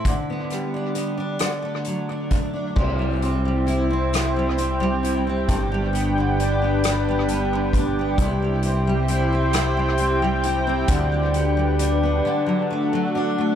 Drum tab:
CC |------|x-----|------|------|
HH |xxxxxx|-xxxxx|xxxxxx|xxxxxx|
SD |-r-r--|---r--|---r--|---r--|
BD |o----o|o-----|o----o|o-----|

CC |------|
HH |xxx---|
SD |------|
BD |o-----|